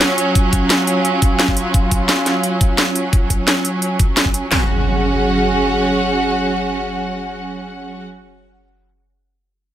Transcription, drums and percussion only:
0.01 snare loud
0.01 closed hi-hat medium
0.18 closed hi-hat medium
0.35 kick loud
0.35 closed hi-hat medium
0.53 kick medium
0.53 closed hi-hat medium
0.70 snare loud
0.70 closed hi-hat medium
0.87 closed hi-hat medium
1.05 closed hi-hat medium
1.22 kick loud
1.22 closed hi-hat medium
1.39 snare loud
1.39 closed hi-hat medium
1.48 kick medium
1.57 closed hi-hat medium
1.74 kick loud
1.74 closed hi-hat medium
1.91 kick medium
1.91 closed hi-hat medium
2.09 snare loud
2.09 closed hi-hat medium
2.26 snare soft
2.26 closed hi-hat medium
2.43 closed hi-hat medium
2.61 kick loud
2.61 closed hi-hat medium
2.78 snare loud
2.78 closed hi-hat medium
2.96 closed hi-hat loud
3.13 kick loud
3.13 closed hi-hat medium
3.30 kick medium
3.30 closed hi-hat loud
3.47 snare loud
3.47 closed hi-hat medium
3.65 closed hi-hat medium
3.82 closed hi-hat medium
3.99 kick loud
3.99 closed hi-hat medium
4.17 snare loud
4.17 closed hi-hat medium
4.26 kick medium
4.34 closed hi-hat medium
4.52 snare loud
4.52 clap medium

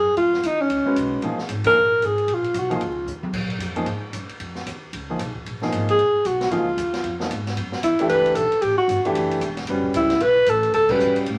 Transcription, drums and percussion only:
0.17 ride medium
0.33 snare soft
0.43 hi-hat pedal soft
0.43 ride medium
0.70 ride medium
0.96 hi-hat pedal medium
0.96 ride medium
1.22 ride medium
1.38 snare soft
1.49 hi-hat pedal medium
1.49 ride medium
1.64 kick medium
1.64 ride medium
2.02 hi-hat pedal soft
2.02 ride medium
2.18 ride soft
2.28 ride medium
2.44 ride soft
2.54 hi-hat pedal medium
2.54 ride medium
2.71 ride soft
2.81 ride soft
3.07 hi-hat pedal medium
3.23 high tom medium
3.33 kick medium
3.33 crash medium
3.50 ride soft
3.60 hi-hat pedal soft
3.60 ride medium
3.76 ride soft
3.86 ride soft
4.13 hi-hat pedal medium
4.13 ride medium
4.29 ride soft
4.40 ride medium
4.55 snare soft
4.67 hi-hat pedal medium
4.67 ride medium
4.93 ride medium
5.19 hi-hat pedal medium
5.19 ride medium
5.35 kick medium
5.46 ride medium
5.62 snare soft
5.72 hi-hat pedal soft
5.72 ride medium
5.89 ride soft
5.99 ride medium
6.25 hi-hat pedal medium
6.25 ride medium
6.41 snare medium
6.41 ride soft
6.51 ride medium
6.78 hi-hat pedal medium
6.78 ride medium
6.93 snare soft
6.93 ride soft
7.04 ride soft
7.20 snare soft
7.31 hi-hat pedal soft
7.31 ride medium
7.47 snare soft
7.47 ride soft
7.57 ride medium
7.72 snare soft
7.83 hi-hat pedal medium
7.83 ride medium
7.99 ride medium
8.09 ride medium
8.26 ride soft
8.35 hi-hat pedal medium
8.35 ride medium
8.52 ride soft
8.62 ride medium
8.89 hi-hat pedal medium
8.89 ride medium
9.05 ride soft
9.15 ride medium
9.31 ride medium
9.41 hi-hat pedal soft
9.41 ride medium
9.57 snare soft
9.57 ride soft
9.67 ride medium
9.83 kick medium
9.94 hi-hat pedal medium
9.94 ride medium
10.10 snare soft
10.10 ride medium
10.20 ride medium
10.46 hi-hat pedal medium
10.46 ride medium
10.63 ride soft
10.73 ride medium
10.89 kick medium
10.89 crash medium
11.00 hi-hat pedal medium
11.16 ride medium
11.26 ride medium

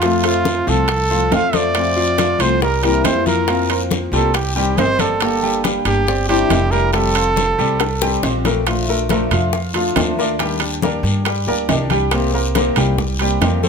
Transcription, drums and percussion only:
0.02 high bongo medium
0.02 high conga soft
0.02 high timbale medium
0.02 long guiro medium
0.23 high conga soft
0.23 high timbale medium
0.45 high bongo medium
0.45 high conga medium
0.45 low timbale medium
0.45 short guiro medium
0.67 high bongo soft
0.67 high conga soft
0.67 short guiro medium
0.88 high bongo medium
0.88 high conga soft
0.88 high timbale medium
0.88 long guiro medium
1.10 high bongo soft
1.10 high conga soft
1.32 high bongo soft
1.32 low bongo medium
1.32 high conga medium
1.32 high timbale medium
1.32 low timbale medium
1.32 short guiro medium
1.53 high bongo soft
1.53 high conga medium
1.53 high timbale medium
1.53 short guiro medium
1.75 high bongo medium
1.75 high conga soft
1.75 high timbale medium
1.75 long guiro medium
1.98 high conga soft
2.18 high bongo medium
2.18 high conga medium
2.18 high timbale medium
2.18 low timbale medium
2.18 short guiro medium
2.40 high bongo soft
2.40 high conga soft
2.40 high timbale medium
2.40 short guiro medium
2.61 high bongo medium
2.61 high conga soft
2.61 long guiro medium
2.83 high bongo soft
2.83 high conga soft
2.83 high timbale medium
3.04 high bongo soft
3.04 low bongo medium
3.04 high conga medium
3.04 high timbale medium
3.04 low timbale medium
3.04 short guiro medium
3.26 high bongo soft
3.26 high conga medium
3.26 short guiro medium
3.48 high bongo medium
3.48 high conga soft
3.48 high timbale medium
3.48 long guiro medium
3.70 high conga soft
3.70 high timbale medium
3.91 high bongo medium
3.91 high conga medium
3.91 low timbale medium
3.91 short guiro medium
4.13 high bongo soft
4.13 high conga soft
4.13 short guiro medium
4.34 high bongo medium
4.34 high conga soft
4.34 high timbale medium
4.34 long guiro medium
4.56 high bongo soft
4.56 high conga soft
4.77 high bongo soft
4.77 low bongo medium
4.77 high conga medium
4.77 high timbale medium
4.77 low timbale medium
4.77 short guiro medium
4.99 high bongo soft
4.99 high conga medium
4.99 high timbale medium
4.99 short guiro medium
5.20 high bongo medium
5.20 high conga soft
5.20 high timbale medium
5.20 long guiro medium
5.43 high conga soft
5.64 high bongo medium
5.64 high conga medium
5.64 high timbale medium
5.64 low timbale medium
5.64 short guiro medium
5.85 high bongo soft
5.85 high conga soft
5.85 high timbale medium
5.85 short guiro medium
6.07 high bongo medium
6.07 high conga soft
6.07 long guiro medium
6.29 high bongo soft
6.29 high conga soft
6.29 high timbale medium
6.50 high bongo soft
6.50 low bongo medium
6.50 high conga medium
6.50 high timbale medium
6.50 low timbale medium
6.50 short guiro medium
6.71 high bongo soft
6.71 short guiro medium
6.93 high bongo medium
6.93 high conga soft
6.93 high timbale medium
6.93 long guiro medium
7.15 high conga soft
7.15 high timbale medium
7.36 high bongo medium
7.36 high conga medium
7.36 low timbale medium
7.36 short guiro medium
7.59 high bongo soft
7.59 high conga soft
7.59 short guiro medium
7.80 high bongo medium
7.80 high conga soft
7.80 high timbale medium
7.80 long guiro medium
8.02 high bongo medium
8.02 high conga soft
8.23 low bongo medium
8.23 high conga medium
8.23 high timbale medium
8.23 low timbale medium
8.23 short guiro medium
8.45 low bongo medium
8.45 high conga medium
8.45 high timbale medium
8.45 short guiro medium
8.67 high bongo medium
8.67 high conga soft
8.67 high timbale medium
8.67 long guiro medium
8.88 high conga soft
9.09 high bongo medium
9.09 high conga loud
9.09 high timbale medium
9.09 low timbale medium
9.09 short guiro medium
9.31 high bongo soft
9.31 high conga soft
9.31 low conga medium
9.31 high timbale medium
9.31 short guiro medium
9.53 high bongo medium
9.53 high conga soft
9.53 long guiro medium
9.74 high bongo soft
9.74 high conga soft
9.74 high timbale medium
9.96 high bongo soft
9.96 low bongo medium
9.96 high conga medium
9.96 high timbale loud
9.96 low timbale medium
9.96 short guiro medium
10.19 high bongo soft
10.19 short guiro medium
10.39 high bongo medium
10.39 high conga soft
10.39 high timbale medium
10.39 long guiro medium
10.60 high conga soft
10.60 high timbale medium
10.82 high bongo medium
10.82 high conga medium
10.82 low timbale medium
10.82 short guiro medium
11.05 high bongo soft
11.05 high conga soft
11.05 short guiro medium
11.25 high bongo medium
11.25 high conga soft
11.25 high timbale medium
11.25 long guiro medium
11.48 high bongo soft
11.48 high conga soft
11.69 high bongo soft
11.69 low bongo medium
11.69 high conga medium
11.69 high timbale medium
11.69 low timbale medium
11.69 short guiro medium
11.90 high bongo soft
11.90 high conga medium
11.90 high timbale medium
11.90 short guiro medium
12.11 high bongo medium
12.11 high conga soft
12.11 high timbale medium
12.11 long guiro medium
12.34 high conga soft
12.55 high bongo medium
12.55 high conga medium
12.55 high timbale medium
12.55 low timbale medium
12.55 short guiro medium
12.76 high bongo soft
12.76 high conga soft
12.76 low conga medium
12.76 high timbale medium
12.76 short guiro medium
12.98 high bongo medium
12.98 high conga soft
12.98 low conga medium
12.98 long guiro medium
13.19 high bongo soft
13.19 high conga soft
13.19 high timbale medium
13.42 high bongo soft
13.42 low bongo medium
13.42 high conga medium
13.42 high timbale medium
13.42 low timbale medium
13.42 short guiro medium
13.63 high bongo soft
13.63 high conga medium
13.63 short guiro medium

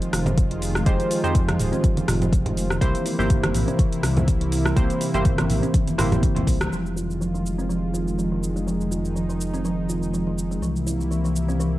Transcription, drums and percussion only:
0.02 closed hi-hat soft
0.02 shaker soft
0.13 cross-stick medium
0.13 open hi-hat medium
0.13 high conga medium
0.13 shaker medium
0.26 closed hi-hat soft
0.26 high conga loud
0.26 low conga loud
0.26 shaker soft
0.38 kick loud
0.38 closed hi-hat medium
0.38 shaker medium
0.51 closed hi-hat soft
0.62 open hi-hat medium
0.62 shaker loud
0.75 cross-stick medium
0.75 shaker soft
0.86 kick loud
0.86 closed hi-hat medium
0.86 shaker medium
1.00 closed hi-hat soft
1.00 shaker soft
1.11 open hi-hat medium
1.11 shaker medium
1.24 closed hi-hat soft
1.24 high conga medium
1.24 shaker soft
1.35 kick loud
1.35 closed hi-hat medium
1.35 shaker medium
1.49 cross-stick medium
1.49 closed hi-hat soft
1.49 high conga loud
1.59 mid tom medium
1.59 open hi-hat medium
1.59 shaker medium
1.73 closed hi-hat soft
1.73 shaker soft
1.84 kick loud
1.84 closed hi-hat medium
1.84 high conga medium
1.84 shaker medium
1.97 closed hi-hat soft
1.97 high conga loud
1.97 shaker soft
2.08 cross-stick medium
2.08 mid tom medium
2.08 open hi-hat medium
2.08 shaker medium
2.22 closed hi-hat soft
2.22 low conga loud
2.22 shaker soft
2.33 kick loud
2.33 closed hi-hat medium
2.33 shaker soft
2.46 closed hi-hat soft
2.46 low conga loud
2.57 open hi-hat medium
2.57 shaker medium
2.70 cross-stick medium
2.70 high conga medium
2.70 shaker soft
2.81 kick loud
2.81 closed hi-hat medium
2.81 shaker soft
2.95 closed hi-hat soft
2.95 shaker soft
3.06 open hi-hat medium
3.06 shaker medium
3.19 high conga medium
3.19 shaker soft
3.30 kick loud
3.30 closed hi-hat medium
3.30 shaker soft
3.44 cross-stick medium
3.44 closed hi-hat soft
3.44 high conga loud
3.54 mid tom medium
3.54 open hi-hat medium
3.54 shaker medium
3.68 closed hi-hat soft
3.68 shaker soft
3.79 kick loud
3.79 closed hi-hat medium
3.79 shaker medium
3.92 closed hi-hat soft
3.92 shaker soft
4.03 cross-stick medium
4.03 open hi-hat loud
4.03 high conga medium
4.03 shaker medium
4.17 closed hi-hat soft
4.17 high conga medium
4.17 low conga loud
4.17 shaker soft
4.28 kick loud
4.28 closed hi-hat medium
4.28 shaker medium
4.41 closed hi-hat soft
4.52 open hi-hat medium
4.52 shaker medium
4.66 cross-stick medium
4.66 shaker soft
4.77 kick loud
4.77 closed hi-hat medium
4.77 shaker medium
4.90 closed hi-hat soft
4.90 shaker soft
5.01 open hi-hat medium
5.01 shaker medium
5.14 closed hi-hat soft
5.14 high conga medium
5.14 shaker soft
5.25 kick loud
5.25 closed hi-hat medium
5.25 shaker medium
5.38 cross-stick medium
5.38 closed hi-hat soft
5.38 high conga loud
5.38 low conga medium
5.38 shaker soft
5.50 mid tom medium
5.50 open hi-hat medium
5.50 shaker medium
5.63 closed hi-hat soft
5.63 shaker soft
5.74 kick loud
5.74 closed hi-hat medium
5.74 high conga medium
5.74 shaker medium
5.87 closed hi-hat soft
5.87 high conga medium
5.87 shaker soft
5.99 cross-stick medium
5.99 mid tom medium
5.99 open hi-hat medium
5.99 shaker medium
6.12 closed hi-hat soft
6.12 low conga loud
6.12 shaker soft
6.23 kick loud
6.23 closed hi-hat medium
6.23 shaker medium
6.36 closed hi-hat soft
6.36 mid tom medium
6.36 low conga loud
6.47 kick medium
6.47 open hi-hat medium
6.47 shaker medium
6.60 cross-stick medium
6.60 closed hi-hat soft
6.60 high conga medium
6.60 shaker soft
6.73 shaker soft
6.86 shaker soft
6.97 shaker medium
7.11 shaker soft
7.22 shaker soft
7.35 shaker soft
7.46 shaker medium
7.59 shaker soft
7.70 shaker soft
7.95 shaker medium
8.08 shaker soft
8.19 shaker medium
8.43 shaker medium
8.57 shaker soft
8.68 shaker medium
8.81 shaker soft
8.92 shaker medium
9.05 shaker soft
9.16 shaker soft
9.30 shaker soft
9.41 shaker medium
9.54 shaker soft
9.65 shaker medium
9.89 shaker medium
10.03 shaker soft
10.14 shaker medium
10.38 shaker medium
10.52 shaker soft
10.63 shaker medium
10.76 shaker soft
10.87 shaker medium
11.01 shaker soft
11.12 shaker medium
11.25 shaker soft
11.36 shaker medium
11.49 shaker soft
11.60 shaker medium

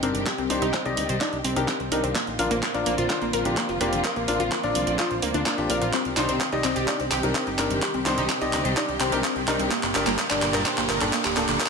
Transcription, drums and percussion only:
0.03 open hi-hat loud
0.15 closed hi-hat soft
0.26 kick loud
0.26 clap medium
0.26 closed hi-hat medium
0.38 closed hi-hat soft
0.50 open hi-hat loud
0.62 closed hi-hat soft
0.74 kick loud
0.74 clap medium
0.74 closed hi-hat medium
0.86 closed hi-hat soft
0.97 open hi-hat loud
1.09 closed hi-hat medium
1.21 kick loud
1.21 clap medium
1.21 closed hi-hat soft
1.33 closed hi-hat soft
1.45 open hi-hat loud
1.56 closed hi-hat medium
1.68 kick loud
1.68 clap medium
1.68 closed hi-hat medium
1.80 closed hi-hat soft
1.92 open hi-hat loud
2.04 closed hi-hat medium
2.15 kick loud
2.15 clap medium
2.15 closed hi-hat medium
2.27 closed hi-hat soft
2.39 open hi-hat loud
2.51 closed hi-hat soft
2.63 kick loud
2.63 clap medium
2.63 closed hi-hat soft
2.74 closed hi-hat soft
2.86 open hi-hat loud
2.98 closed hi-hat soft
3.10 kick loud
3.10 clap medium
3.10 closed hi-hat soft
3.22 closed hi-hat soft
3.33 open hi-hat loud
3.45 closed hi-hat medium
3.57 kick loud
3.57 clap medium
3.57 closed hi-hat soft
3.69 closed hi-hat soft
3.81 open hi-hat loud
3.93 closed hi-hat soft
4.04 kick loud
4.04 clap medium
4.04 closed hi-hat soft
4.16 closed hi-hat soft
4.28 open hi-hat loud
4.40 closed hi-hat soft
4.52 kick loud
4.52 clap medium
4.52 closed hi-hat medium
4.63 closed hi-hat soft
4.75 open hi-hat loud
4.87 closed hi-hat soft
4.99 kick loud
4.99 clap medium
4.99 closed hi-hat soft
5.11 closed hi-hat soft
5.22 open hi-hat loud
5.34 closed hi-hat soft
5.46 kick loud
5.46 clap medium
5.46 closed hi-hat soft
5.58 closed hi-hat soft
5.70 open hi-hat loud
5.82 closed hi-hat soft
5.93 kick loud
5.93 clap medium
5.93 closed hi-hat medium
6.05 closed hi-hat soft
6.17 clap medium
6.17 open hi-hat loud
6.29 closed hi-hat soft
6.41 kick loud
6.41 clap medium
6.41 closed hi-hat soft
6.52 closed hi-hat soft
6.64 clap medium
6.64 open hi-hat loud
6.76 closed hi-hat medium
6.88 kick loud
6.88 clap medium
6.88 closed hi-hat soft
7.00 closed hi-hat soft
7.11 clap medium
7.11 open hi-hat loud
7.23 closed hi-hat soft
7.35 kick loud
7.35 clap medium
7.35 closed hi-hat soft
7.47 closed hi-hat soft
7.59 clap medium
7.59 open hi-hat loud
7.71 closed hi-hat soft
7.82 kick loud
7.82 clap medium
7.82 closed hi-hat medium
7.94 closed hi-hat soft
8.06 clap medium
8.06 open hi-hat loud
8.18 closed hi-hat medium
8.29 kick loud
8.29 clap medium
8.29 closed hi-hat medium
8.41 closed hi-hat soft
8.53 clap medium
8.53 open hi-hat loud
8.65 closed hi-hat soft
8.77 kick loud
8.77 clap medium
8.77 closed hi-hat soft
8.89 closed hi-hat soft
9.00 clap medium
9.00 open hi-hat loud
9.12 closed hi-hat medium
9.24 kick loud
9.24 clap medium
9.24 closed hi-hat medium
9.36 closed hi-hat soft
9.48 clap medium
9.48 open hi-hat loud
9.60 closed hi-hat medium
9.71 kick loud
9.71 clap medium
9.71 closed hi-hat medium
9.83 clap medium
9.83 closed hi-hat soft
9.95 clap medium
9.95 open hi-hat loud
10.07 clap medium
10.07 closed hi-hat medium
10.18 kick loud
10.18 clap medium
10.18 closed hi-hat medium
10.30 clap medium
10.30 closed hi-hat soft
10.42 clap medium
10.42 open hi-hat loud
10.54 clap medium
10.54 closed hi-hat medium
10.66 kick loud
10.66 clap medium
10.66 closed hi-hat medium
10.78 clap medium
10.78 closed hi-hat soft
10.89 clap loud
10.89 open hi-hat loud
11.01 clap medium
11.01 closed hi-hat medium
11.13 kick loud
11.13 clap loud
11.13 closed hi-hat medium
11.25 clap medium
11.25 closed hi-hat soft
11.37 clap medium
11.37 open hi-hat loud
11.49 clap medium
11.49 closed hi-hat medium
11.60 kick loud
11.60 clap loud
11.60 closed hi-hat medium

